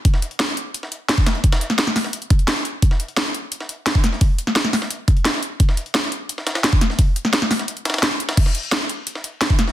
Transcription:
\new DrumStaff \with { instrumentName = "Drums" } \drummode { \time 4/4 \tempo 4 = 173 <hh bd>16 sn16 hh16 hh16 <hh sn>16 hh16 hh8 hh16 sn16 hh8 <hh sn>16 bd16 <hh sn>16 hh16 | <hh bd>16 <hh sn>16 hh16 <hh sn>16 <hh sn>16 sn16 <hh hho sn>16 sn16 hh16 hh16 <hh bd>16 hh16 <hh sn>16 hh16 hh8 | <hh bd>16 sn16 hh16 hh16 <hh sn>16 hh16 hh8 hh16 sn16 hh8 <hh sn>16 bd16 <hh sn>16 sn16 | <hh hho bd>8 hh16 sn16 <hh sn>16 sn16 <hh hho sn>16 sn16 hh8 <hh bd>16 hh16 <hh sn>16 hh16 hh8 |
<hh bd>16 sn16 hh16 hh16 <hh sn>16 hh16 hh8 hh16 sn16 <hh sn>16 <hh sn>16 <hh sn>16 bd16 <hh sn>16 sn16 | <hh hho bd>8 hh16 sn16 <hh sn>16 sn16 <hh hho sn>16 <hh sn>16 hh16 hh16 <hh sn>32 <hh sn>32 <hh sn>32 <hh sn>32 <hh sn>8 hh16 <hh sn>16 | <cymc hh bd>16 sn16 hh16 hh16 <hh sn>16 hh16 hh8 hh16 sn16 hh8 <hh sn>16 bd16 <hh sn>16 sn16 | }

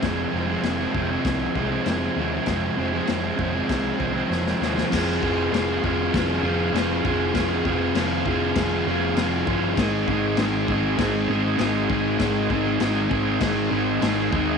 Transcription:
<<
  \new Staff \with { instrumentName = "Transistor combo organ" } { \time 4/4 \key f \minor \tempo 4 = 99 <aes' c'' aes''>1~ | <aes' c'' aes''>1 | <aes' c'' f''>1~ | <aes' c'' f''>1 |
<aes' c'' ees''>1~ | <aes' c'' ees''>1 | }
  \new Staff \with { instrumentName = "Overdriven electric guitar" } { \time 4/4 \key f \minor <f, c f aes c'>8 <c f aes c'>16 <f aes c'>16 <f, c f aes c'>16 <f aes c'>16 <c f aes c'>16 <f aes c'>8. <c f aes c'>16 <f aes c'>16 <f, c f aes c'>8 <c f aes c'>16 <f aes c'>16 | <f, c f aes c'>8 <c f aes c'>16 <f aes c'>16 <f, c f aes c'>16 <f aes c'>16 <c f aes c'>16 <f aes c'>8. <c f aes c'>16 <f aes c'>16 <f, c f aes c'>8 <c f aes c'>16 <f aes c'>16 | <f c' f' aes'>8 <f c' f' aes'>8 <f c' f' aes'>8 <f c' f' aes'>8 <f c' f' aes'>8 <f c' f' aes'>8 <f c' f' aes'>8 <f c' f' aes'>8 | <f c' f' aes'>8 <f c' f' aes'>8 <f c' f' aes'>8 <f c' f' aes'>8 <f c' f' aes'>8 <f c' f' aes'>8 <f c' f' aes'>8 <f c' f' aes'>8 |
<aes c' ees' aes'>8 <aes c' ees' aes'>8 <aes c' ees' aes'>8 <aes c' ees' aes'>8 <aes c' ees' aes'>8 <aes c' ees' aes'>8 <aes c' ees' aes'>8 <aes c' ees' aes'>8 | <aes c' ees' aes'>8 <aes c' ees' aes'>8 <aes c' ees' aes'>8 <aes c' ees' aes'>8 <aes c' ees' aes'>8 <aes c' ees' aes'>8 <aes c' ees' aes'>8 <aes c' ees' aes'>8 | }
  \new Staff \with { instrumentName = "Picked electric bass" } { \clef bass \time 4/4 \key f \minor f,,8 f,,8 f,,8 f,,8 c,8 c,8 f,,8 ees,8 | f,,8 f,,8 f,,8 f,,8 c,8 c,8 f,,8 ees,8 | f,,8 f,,8 f,,8 f,,8 f,,8 f,,8 f,,8 f,,8 | f,,8 f,,8 f,,8 f,,8 f,,8 f,,8 f,,8 g,,8 |
aes,,8 aes,,8 aes,,8 aes,,8 aes,,8 aes,,8 aes,,8 aes,,8 | aes,,8 aes,,8 aes,,8 aes,,8 aes,,8 aes,,8 aes,,8 ees,8 | }
  \new DrumStaff \with { instrumentName = "Drums" } \drummode { \time 4/4 <cymc bd sn>4 <cymc sn>8 bd8 <cymc bd sn>8 bd8 <cymc sn>4 | <cymc bd sn>4 <cymc sn>8 bd8 <cymc bd sn>8 bd8 sn16 sn16 sn16 sn16 | <cymc bd sn>8 bd8 <cymc sn>8 bd8 <cymc bd sn>4 <cymc sn>8 bd8 | <cymc bd sn>8 bd8 <cymc sn>8 bd8 <cymc bd sn>4 <cymc sn>8 bd8 |
<cymc bd sn>8 bd8 <cymc sn>8 bd8 <cymc bd sn>4 <cymc sn>8 bd8 | <cymc bd sn>8 bd8 <cymc sn>8 bd8 <cymc bd sn>4 <cymc sn>8 bd8 | }
>>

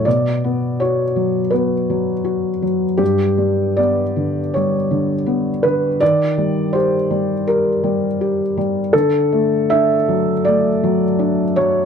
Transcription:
<<
  \new Staff \with { instrumentName = "Felt piano" } { \time 4/4 \key d \major \tempo 4 = 82 d''4 cis''4 b'4. r8 | g'4 d''4 cis''4. b'8 | d''4 c''4 bes'4. r8 | a'4 e''4 d''4. cis''8 | }
  \new Staff \with { instrumentName = "Felt piano" } { \clef bass \time 4/4 \key d \major b,8 b8 fis'8 fis8 b8 fis8 fis'8 fis8 | g,8 g8 b8 d8 g8 d8 b8 d8 | ees8 g8 g'8 g8 g'8 g8 g'8 g8 | d8 a8 d'8 fis8 a8 fis8 d'8 fis8 | }
>>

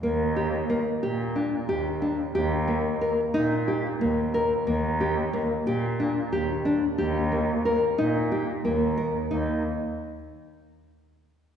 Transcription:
<<
  \new Staff \with { instrumentName = "Nylon-string guitar" } { \time 7/8 \key ees \major \tempo 4 = 90 bes8 g'8 bes8 g'8 d'8 g'8 d'8 | g'8 bes8 bes'8 ees'8 g'8 bes8 bes'8 | bes8 g'8 bes8 g'8 d'8 g'8 d'8 | g'8 bes8 bes'8 ees'8 g'8 bes8 bes'8 |
ees'8 r2. | }
  \new Staff \with { instrumentName = "Cello" } { \clef bass \time 7/8 \key ees \major ees,4. bes,4 ees,4 | ees,4. bes,4 ees,4 | ees,4. bes,4 ees,4 | ees,4. bes,4 ees,4 |
ees,8 r2. | }
>>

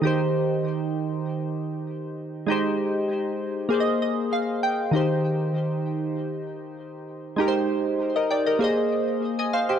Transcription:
\new Staff \with { instrumentName = "Synth keys" } { \time 4/4 \key ees \major \tempo 4 = 98 << { r1 | r2 r8 ees''8 f''8 g''8 | r1 | r4 r16 <bes' ees''>16 <d'' g''>16 <bes' ees''>8 r4 <ees'' aes''>16 <c'' f''>16 <g' c''>16 | } \\ { <ees ees' g' c''>1 | <aes ees' g' c''>2 <bes aes' c'' d'' ees''>2 | <ees ees' g' c''>1 | <aes ees' g' bes' c''>2 <bes aes' c'' ees''>2 | } >> }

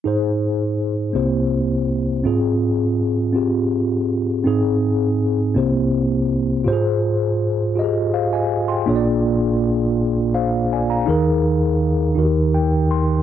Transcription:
<<
  \new Staff \with { instrumentName = "Tine electric piano" } { \time 6/8 \key aes \major \tempo 4. = 54 << { r2. | r2. | r2. | r2 <c'' f''>16 <ees'' aes''>8 <g'' c'''>16~ |
<g'' c'''>16 r4. r16 <c'' f''>8 <d'' aes''>16 <f'' bes''>16~ | <f'' bes''>16 r4. r16 g''8 c'''8 | } \\ { <ees' aes' c''>4 r8 <bes c' e' g' c''>4 r8 | <c' f' aes'>4 r8 <c' f' g'>4 r8 | <c' ees' aes'>4 r8 <bes c' e' g' c''>4 r8 | <f' g' aes' c''>4 r8 <f' g' aes' ees''>4 r8 |
<bes d' f' aes' des'' d''>4 r2 | <ees' aes' bes'>4 r8 <ees' ges' g' bes'>4 r8 | } >> }
  \new Staff \with { instrumentName = "Tine electric piano" } { \clef bass \time 6/8 \key aes \major aes,4. <c, c>4. | aes,2. | aes,4. <c, c>4. | aes,2. |
<bes,, bes,>2. | <ees, ees>4. <ees, ees>4. | }
>>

